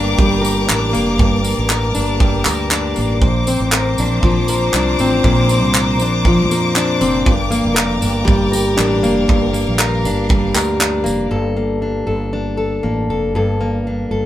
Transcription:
0.00 0.16 G1 loud
0.00 1.17 G2 medium
0.00 0.92 A#3 medium
0.00 0.68 D4 medium
0.00 0.41 A#4 medium
0.00 3.18 A#4 medium
0.00 1.17 G5 medium
0.00 3.18 D6 medium
0.18 0.65 G1 loud
0.18 2.19 G3 medium
0.18 kick loud
0.41 1.70 A#4 medium
0.41 tambourine medium
0.69 0.93 A1 loud
0.69 1.94 D4 medium
0.69 clap loud
0.93 1.20 F1 medium
0.93 1.44 A#3 medium
0.93 tambourine medium
1.18 1.55 G1 loud
1.18 3.21 G2 medium
1.18 3.20 A5 medium
1.18 kick loud
1.44 2.95 A#3 medium
1.44 tambourine medium
1.58 1.93 A1 medium
1.70 2.46 A#4 medium
1.70 clap loud
1.95 2.42 G1 medium
1.95 2.71 D4 medium
1.95 tambourine medium
2.20 3.27 G3 medium
2.20 kick loud
2.45 2.93 D2 medium
2.45 3.51 A#4 medium
2.45 clap medium
2.45 tambourine medium
2.71 3.51 D4 medium
2.71 clap loud
2.96 3.20 A1 medium
2.96 3.47 A#3 medium
2.96 tambourine medium
3.22 3.57 A#1 medium
3.22 7.22 C5 medium
3.22 7.22 A#5 medium
3.22 11.27 D6 medium
3.22 kick loud
3.47 4.99 C4 medium
3.47 tambourine medium
3.60 3.95 A1 medium
3.72 4.49 A#4 medium
3.72 clap loud
3.98 4.21 A#1 loud
3.98 4.76 D4 medium
3.98 tambourine medium
4.23 4.70 A#1 medium
4.23 6.26 F3 medium
4.23 kick loud
4.48 5.77 A#4 medium
4.48 tambourine medium
4.73 4.97 C2 medium
4.73 6.01 D4 medium
4.73 clap loud
4.99 5.23 A1 medium
4.99 5.50 C4 medium
4.99 tambourine soft
5.24 5.63 A#1 loud
5.24 7.26 A#2 medium
5.24 kick loud
5.49 7.00 C4 medium
5.49 tambourine medium
5.63 6.01 C2 medium
5.75 6.52 A#4 medium
5.75 clap loud
5.99 6.51 A#1 loud
5.99 6.76 D4 medium
5.99 tambourine medium
6.25 7.32 F3 medium
6.25 kick loud
6.51 7.03 F2 medium
6.51 7.74 A#4 medium
6.51 tambourine medium
6.76 8.00 D4 medium
6.76 clap loud
7.01 7.24 F1 loud
7.01 7.31 C4 medium
7.01 tambourine medium
7.25 7.62 G1 loud
7.25 9.27 G2 medium
7.25 11.27 A#4 medium
7.25 9.26 G5 medium
7.25 kick loud
7.51 9.03 A#3 medium
7.51 tambourine medium
7.65 8.00 F1 loud
7.75 8.51 A#4 medium
7.75 clap loud
8.01 8.26 G1 loud
8.01 8.77 D4 medium
8.01 tambourine medium
8.25 8.74 G1 medium
8.25 10.29 G3 medium
8.25 kick loud
8.52 9.79 A#4 medium
8.52 tambourine medium
8.77 9.02 A1 loud
8.77 10.05 D4 medium
8.77 clap medium
9.03 9.27 F1 medium
9.03 9.53 A#3 medium
9.03 tambourine medium
9.28 9.64 G1 loud
9.28 11.30 G2 medium
9.28 11.29 F5 medium
9.28 kick loud
9.53 11.03 A#3 medium
9.53 tambourine medium
9.67 10.06 A#1 medium
9.79 10.55 A#4 medium
9.79 clap loud
10.05 10.51 G1 medium
10.05 10.79 D4 medium
10.05 tambourine medium
10.29 12.10 G3 medium
10.29 kick loud
10.55 11.02 D2 medium
10.55 11.31 A#4 medium
10.55 clap medium
10.55 tambourine medium
10.80 11.82 D4 medium
10.80 clap loud
11.04 11.29 F1 medium
11.04 11.56 A#3 medium
11.04 tambourine medium
11.31 12.04 G1 medium
11.31 13.34 G2 medium
11.31 12.06 A4 medium
11.57 12.83 A#3 soft
11.82 12.32 D4 soft
12.07 12.79 G1 medium
12.07 12.56 A4 medium
12.33 13.85 D4 medium
12.57 13.08 A4 medium
12.83 13.07 A1 medium
12.83 13.60 A#3 medium
13.10 13.35 F1 medium
13.10 13.35 A4 medium
13.35 14.07 G1 medium
13.35 14.26 G2 medium
13.35 14.10 A4 medium
13.61 14.26 A#3 soft
13.87 14.26 D4 soft
14.11 14.26 G1 medium
14.11 14.26 A4 medium

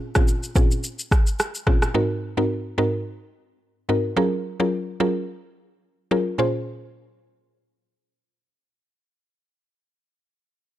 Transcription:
0.00 0.12 A#2 medium
0.00 0.12 C4 medium
0.00 0.12 C#4 medium
0.00 0.12 F4 medium
0.00 0.12 G#4 loud
0.15 0.53 A#2 medium
0.15 0.53 C4 medium
0.15 0.53 C#4 medium
0.15 0.53 F4 medium
0.15 0.53 G#4 medium
0.15 kick medium
0.15 cross-stick medium
0.15 shaker medium
0.28 shaker medium
0.43 shaker soft
0.55 0.81 A#2 medium
0.55 0.81 C4 medium
0.55 0.82 C#4 medium
0.55 0.82 F4 medium
0.55 0.82 G#4 medium
0.55 kick medium
0.55 shaker soft
0.71 shaker medium
0.84 shaker medium
0.99 shaker medium
1.11 kick medium
1.11 cross-stick medium
1.11 shaker soft
1.27 shaker soft
1.39 cross-stick medium
1.39 shaker medium
1.55 shaker medium
1.67 1.88 A#2 medium
1.67 1.88 C4 medium
1.67 1.88 C#4 medium
1.67 1.89 F4 medium
1.67 1.89 G#4 medium
1.67 kick medium
1.67 cross-stick medium
1.82 cross-stick medium
1.82 shaker soft
1.94 2.34 G#2 medium
1.94 2.34 C4 medium
1.94 2.34 D#4 medium
1.94 2.34 F#4 medium
1.94 2.34 A#4 loud
2.37 2.75 G#2 medium
2.37 2.75 C4 medium
2.37 2.75 D#4 medium
2.37 2.75 F#4 medium
2.37 2.75 A#4 medium
2.78 3.04 G#2 medium
2.78 3.04 C4 medium
2.78 3.04 D#4 medium
2.78 3.04 F#4 medium
2.78 3.04 A#4 medium
3.89 4.10 G#2 medium
3.89 4.11 C4 medium
3.89 4.11 D#4 medium
3.89 4.11 F#4 medium
3.89 4.11 A#4 medium
4.17 4.56 F#3 medium
4.17 4.56 C#4 medium
4.17 4.56 F4 medium
4.17 4.56 G#4 medium
4.17 4.56 A#4 loud
4.60 4.97 F#3 medium
4.60 4.97 C#4 medium
4.60 4.97 F4 medium
4.60 4.97 G#4 medium
4.60 4.97 A#4 medium
5.00 5.26 F#3 medium
5.00 5.26 C#4 medium
5.00 5.26 F4 medium
5.00 5.26 G#4 medium
5.00 5.26 A#4 medium
6.11 6.33 F#3 medium
6.11 6.33 C#4 medium
6.11 6.33 F4 medium
6.11 6.33 G#4 medium
6.11 6.33 A#4 medium
6.38 10.07 A#2 medium
6.38 10.07 C#4 medium
6.38 10.07 F4 medium
6.38 10.07 G#4 medium
6.38 10.07 C5 loud

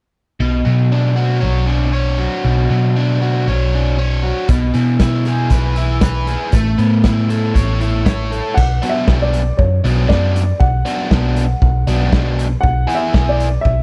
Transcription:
0.40 0.61 B1 medium
0.40 1.96 B2 medium
0.65 1.44 B2 medium
0.65 1.93 F#3 soft
0.92 1.65 D4 medium
1.16 2.17 F#4 medium
1.41 2.27 B1 medium
1.41 1.91 C#5 medium
1.66 2.95 D4 medium
1.93 3.21 C#5 medium
2.18 3.21 F#4 medium
2.44 2.66 B1 medium
2.44 3.72 B2 medium
2.70 3.49 B2 medium
2.70 3.98 F#3 soft
2.96 3.73 D4 medium
3.22 4.22 F#4 medium
3.47 4.31 B1 medium
3.47 3.97 C#5 medium
3.74 4.50 D4 medium
3.98 4.49 C#5 medium
4.23 4.49 F#4 medium
4.49 4.70 B1 medium
4.49 5.76 B2 medium
4.49 kick loud
4.49 closed hi-hat medium
4.74 5.52 B2 medium
4.74 6.02 E3 medium
4.74 closed hi-hat soft
5.00 5.76 E4 medium
5.00 kick medium
5.00 snare medium
5.00 closed hi-hat medium
5.13 snare soft
5.25 6.26 G#4 medium
5.25 closed hi-hat medium
5.50 6.35 B1 medium
5.50 6.02 B4 medium
5.50 kick medium
5.50 closed hi-hat medium
5.76 6.53 E4 medium
5.76 closed hi-hat medium
6.01 6.56 B4 medium
6.01 kick loud
6.01 snare loud
6.01 closed hi-hat medium
6.27 6.53 G#4 medium
6.27 closed hi-hat medium
6.52 6.74 A1 medium
6.52 7.81 A3 medium
6.52 kick loud
6.52 closed hi-hat medium
6.78 7.57 A2 medium
6.78 8.05 B3 medium
6.78 closed hi-hat soft
7.04 7.80 E4 medium
7.04 kick medium
7.04 snare medium
7.04 closed hi-hat medium
7.17 snare soft
7.29 8.30 A4 medium
7.29 closed hi-hat medium
7.55 8.39 A1 medium
7.55 8.04 C#5 medium
7.55 kick loud
7.55 closed hi-hat medium
7.81 8.57 E4 medium
7.81 closed hi-hat soft
8.05 8.57 C#5 medium
8.05 kick medium
8.05 snare loud
8.05 closed hi-hat medium
8.32 8.57 A4 medium
8.32 closed hi-hat medium
8.54 8.78 B1 medium
8.54 8.91 F#5 medium
8.54 kick loud
8.54 crash medium
8.82 9.07 B2 medium
8.82 9.07 F#3 medium
8.82 9.07 B3 medium
8.82 9.07 D4 medium
8.82 closed hi-hat medium
8.89 9.25 E5 medium
9.07 9.50 B1 medium
9.07 9.41 B2 medium
9.07 9.41 F#3 medium
9.07 9.41 B3 medium
9.07 9.41 D4 medium
9.07 kick loud
9.07 snare medium
9.22 9.58 D5 medium
9.33 closed hi-hat medium
9.57 9.80 F#2 medium
9.57 10.05 C#5 medium
9.57 kick medium
9.84 10.05 B1 medium
9.84 10.07 B2 medium
9.84 10.07 F#3 medium
9.84 10.08 B3 medium
9.84 10.08 D4 loud
9.84 closed hi-hat medium
10.08 10.52 F#2 medium
10.08 10.42 B2 medium
10.08 10.42 F#3 medium
10.08 10.42 B3 medium
10.08 10.42 D4 medium
10.08 10.61 D5 medium
10.08 kick loud
10.08 snare loud
10.36 closed hi-hat medium
10.60 10.81 B1 medium
10.60 12.08 F#5 medium
10.60 kick loud
10.85 11.09 B2 medium
10.85 11.10 F#3 medium
10.85 11.10 B3 medium
10.85 11.10 D4 medium
10.85 closed hi-hat medium
11.10 11.53 B1 medium
11.10 11.44 B2 medium
11.10 11.44 F#3 medium
11.10 11.44 B3 medium
11.10 11.44 D4 medium
11.10 kick medium
11.10 snare loud
11.36 closed hi-hat medium
11.62 11.83 B1 medium
11.62 kick medium
11.87 12.08 B1 medium
11.87 12.12 B2 medium
11.87 12.12 F#3 medium
11.87 12.12 B3 medium
11.87 12.13 D4 medium
11.87 closed hi-hat medium
12.13 12.55 B1 medium
12.13 12.46 B2 medium
12.13 12.46 F#3 medium
12.13 12.46 B3 medium
12.13 12.46 D4 medium
12.13 kick loud
12.13 snare loud
12.39 closed hi-hat medium
12.61 12.84 B1 loud
12.61 12.93 F#5 medium
12.61 kick loud
12.87 13.12 E3 medium
12.87 13.13 B3 medium
12.87 13.14 E4 medium
12.87 13.13 G#4 medium
12.87 closed hi-hat medium
12.95 13.31 E5 medium
13.13 13.56 B1 medium
13.13 13.47 E3 medium
13.13 13.47 B3 medium
13.13 13.47 E4 medium
13.13 13.47 G#4 medium
13.13 kick loud
13.13 snare medium
13.29 13.65 D5 medium
13.40 closed hi-hat medium
13.61 13.83 B1 medium
13.61 13.83 E5 medium
13.61 kick medium

